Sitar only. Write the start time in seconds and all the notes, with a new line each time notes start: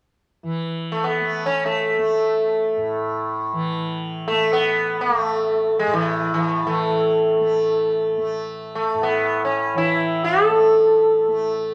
0.92 A3
1.04 B3
1.46 C#4
1.66 A3
4.28 A3
4.53 B3
5.01 A#3
5.21 A3
5.79 G#3
5.93 E3
6.34 E3
6.67 A3
8.75 A3
9.03 B3
9.45 C#4
9.78 E4
10.24 A4